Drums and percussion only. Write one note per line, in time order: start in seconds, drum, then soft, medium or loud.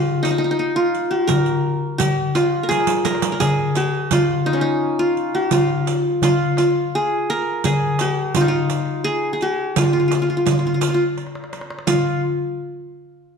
0.24 riq soft
0.24 darbuka tek medium
0.59 darbuka ka soft
0.94 riq soft
1.29 riq medium
1.29 darbuka dum medium
1.46 riq soft
2.00 riq medium
2.00 darbuka dum medium
2.35 riq soft
2.35 darbuka tek medium
2.71 riq soft
2.71 darbuka tek medium
2.80 darbuka ka medium
2.87 riq medium
2.87 darbuka tek medium
2.98 darbuka ka medium
3.05 riq medium
3.05 darbuka tek medium
3.15 darbuka ka medium
3.22 riq medium
3.22 darbuka tek medium
3.34 darbuka ka medium
3.40 riq medium
3.40 darbuka dum medium
3.75 riq soft
3.75 darbuka tek medium
4.11 riq medium
4.11 darbuka dum medium
4.47 darbuka tek medium
4.82 darbuka ka soft
5.17 riq soft
5.51 riq medium
5.51 darbuka dum medium
5.87 riq soft
5.87 darbuka tek medium
6.22 riq medium
6.22 darbuka dum medium
6.57 riq soft
6.57 darbuka tek medium
6.94 darbuka ka soft
7.30 riq soft
7.64 riq medium
7.64 darbuka dum medium
7.99 riq soft
7.99 darbuka tek medium
8.35 riq medium
8.35 darbuka dum medium
8.70 riq soft
8.70 darbuka tek medium
9.06 darbuka ka soft
9.41 riq soft
9.76 riq medium
9.76 darbuka dum medium
9.94 darbuka ka soft
10.11 riq soft
10.11 darbuka tek medium
10.46 riq medium
10.46 darbuka dum medium
10.81 riq medium
10.81 darbuka tek medium
11.17 riq soft
11.17 darbuka tek medium
11.27 darbuka ka medium
11.35 darbuka tek medium
11.44 darbuka ka medium
11.53 riq soft
11.53 darbuka tek medium
11.61 darbuka ka medium
11.70 darbuka tek medium
11.79 darbuka ka medium
11.87 riq medium
11.87 darbuka dum medium